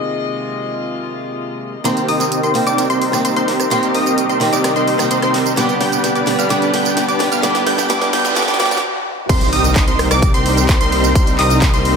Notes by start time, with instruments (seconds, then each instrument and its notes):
Already playing: string section C3 G#3 A#3 D#5, steel-string acoustic guitar D#3 G#3 C4 G4
0.00 string section F4
1.84 string section C3 G3 A#3 D#4, steel-string acoustic guitar D#3 A#3 C4 G4, supersaw synth C4 D#4 G4 A#4 C5, digital synth lead C6, snare, closed hi-hat, tambourine, riser
1.97 closed hi-hat, tambourine
2.08 supersaw synth C4 D#4 G4 A#4 D#5, digital synth lead D#6, open hi-hat
2.20 snare, closed hi-hat, tambourine
2.32 closed hi-hat, tambourine
2.43 supersaw synth C4 D#4 G4 A#4 C5, digital synth lead C6, closed hi-hat, tambourine
2.54 steel-string acoustic guitar D#3 A#3 C4 G4, open hi-hat
2.67 supersaw synth C4 D#4 G4 A#4 D5, digital synth lead D6, closed hi-hat, tambourine
2.78 snare, closed hi-hat, tambourine
2.90 supersaw synth C4 D#4 G4 A#4 C5, digital synth lead C6, closed hi-hat, tambourine
3.02 open hi-hat
3.12 steel-string acoustic guitar D#3 A#3 C4 G4, cross-stick, snare, closed hi-hat, tambourine
3.25 supersaw synth C4 D#4 G4 A#4 C5, digital synth lead C6, closed hi-hat, tambourine
3.36 supersaw synth C4 D#4 G4 A#4 C5, digital synth lead C6, closed hi-hat, tambourine
3.48 snare, open hi-hat
3.60 cross-stick, closed hi-hat, tambourine
3.70 steel-string acoustic guitar D#3 A#3 C4 G4, supersaw synth C4 D#4 G4 A#4 C5, string section D#5, digital synth lead C6, snare, closed hi-hat, tambourine
3.83 closed hi-hat, tambourine
3.95 supersaw synth C4 D#4 G4 A#4 D#5, digital synth lead D#6, open hi-hat
4.06 closed hi-hat, tambourine
4.18 closed hi-hat, tambourine
4.29 supersaw synth C4 D#4 G4 A#4 C5, digital synth lead C6, closed hi-hat, tambourine
4.40 steel-string acoustic guitar D#3 A#3 C4 G4, snare, open hi-hat
4.53 supersaw synth C4 D#4 G4 A#4 D5, digital synth lead D6, closed hi-hat, tambourine
4.64 cross-stick, snare, closed hi-hat, tambourine
4.76 supersaw synth C4 D#4 G4 A#4 C5, digital synth lead C6, closed hi-hat, tambourine
4.88 open hi-hat
4.98 steel-string acoustic guitar D#3 A#3 C4 G4, cross-stick, snare, closed hi-hat, tambourine
5.11 supersaw synth C4 D#4 G4 A#4 C5, digital synth lead C6, closed hi-hat, tambourine
5.22 supersaw synth C4 D#4 G4 A#4 C5, digital synth lead C6, cross-stick, closed hi-hat, tambourine
5.34 snare, open hi-hat
5.46 closed hi-hat, tambourine
5.56 steel-string acoustic guitar D3 G3 B3 G4, supersaw synth B3 D4 G4 B4 D5, string section B3 D4 D5, digital synth lead D6, snare, closed hi-hat, tambourine
5.69 closed hi-hat, tambourine
5.81 supersaw synth B3 D4 G4 B4 G5, digital synth lead G6, snare, open hi-hat
5.92 closed hi-hat, tambourine
6.04 snare, closed hi-hat, tambourine
6.15 supersaw synth B3 D4 G4 B4 D5, digital synth lead D6, closed hi-hat, tambourine
6.26 steel-string acoustic guitar D3 G3 B3 G4, snare, open hi-hat
6.39 supersaw synth B3 D4 G4 B4 F5, digital synth lead F6, closed hi-hat, tambourine
6.49 steel-string acoustic guitar D3 G3 B3 G4, supersaw synth B3 D4 G4 B4 D5, digital synth lead D6, snare, closed hi-hat, tambourine
6.62 closed hi-hat, tambourine
6.74 supersaw synth B3 D4 G4 B4 G5, digital synth lead G6, snare, open hi-hat
6.85 closed hi-hat, tambourine
6.97 snare, closed hi-hat, tambourine
7.08 supersaw synth B3 D4 G4 B4 D5, digital synth lead D6, closed hi-hat, tambourine
7.19 steel-string acoustic guitar D3 G3 B3 G4, snare, open hi-hat
7.32 supersaw synth B3 D4 G4 B4 F5, digital synth lead F6, closed hi-hat, tambourine
7.42 steel-string acoustic guitar D3 G3 B3 G4, supersaw synth B3 D4 G4 B4 D5, digital synth lead D6, snare, closed hi-hat, tambourine, noise sweep
7.55 snare, closed hi-hat, tambourine
7.67 supersaw synth B3 D4 G4 B4 G5, digital synth lead G6, snare, open hi-hat
7.78 snare, closed hi-hat, tambourine
7.89 steel-string acoustic guitar D3 G3 B3 G4, supersaw synth B3 D4 G4 B4 D5, digital synth lead D6, snare, closed hi-hat, tambourine
8.02 snare, closed hi-hat, tambourine
8.13 supersaw synth B3 D4 G4 B4 G5, digital synth lead G6, snare, open hi-hat
8.25 snare, closed hi-hat, tambourine
8.35 steel-string acoustic guitar D3 G3 B3 G4, supersaw synth B3 D4 G4 B4 D5, digital synth lead D6, snare, closed hi-hat, tambourine
8.42 snare
8.48 snare, closed hi-hat, tambourine
8.54 snare
8.59 steel-string acoustic guitar D3 G3 B3 G4, supersaw synth B3 D4 G4 B4 D5, digital synth lead D6, snare, open hi-hat
8.66 snare
8.71 snare, closed hi-hat, tambourine
8.77 snare
9.29 detuned saw bass C2, string section C3 G3 A#3 D#4, supersaw synth C4 D#4 G4 A#4 C5, digital synth lead C6, kick, closed hi-hat, crash, tambourine, impact
9.41 closed hi-hat, tambourine
9.53 detuned saw bass C2, supersaw synth C4 D#4 G4 A#4 D#5, digital synth lead D#6, open hi-hat
9.64 closed hi-hat, tambourine
9.76 kick, clap, closed hi-hat, tambourine
9.88 detuned saw bass C2, supersaw synth C4 D#4 G4 A#4 C5, digital synth lead C6, closed hi-hat, tambourine
9.99 cross-stick, open hi-hat
10.11 detuned saw bass C2, supersaw synth C4 D#4 G4 A#4 D5, digital synth lead D6, cross-stick, closed hi-hat, tambourine
10.22 kick, closed hi-hat, tambourine
10.34 detuned saw bass C2, supersaw synth C4 D#4 G4 A#4 C5, digital synth lead C6, closed hi-hat, tambourine
10.46 open hi-hat
10.57 closed hi-hat, tambourine
10.69 detuned saw bass C2, supersaw synth C4 A#4 C5, digital synth lead C6, kick, clap, closed hi-hat, tambourine
10.81 detuned saw bass C2, supersaw synth C4 D#4 G4 A#4 C5, digital synth lead C6, closed hi-hat, tambourine
10.92 open hi-hat
11.04 closed hi-hat, tambourine
11.15 detuned saw bass C2, digital synth lead C6, kick, closed hi-hat, tambourine
11.27 closed hi-hat, tambourine
11.39 detuned saw bass C2, supersaw synth C4 D#4 G4 A#4 D#5, digital synth lead D#6, clap, open hi-hat
11.50 closed hi-hat, tambourine
11.62 kick, clap, closed hi-hat, tambourine
11.74 detuned saw bass C2, supersaw synth C4 D#4 G4 A#4 C5, digital synth lead C6, closed hi-hat, tambourine
11.85 open hi-hat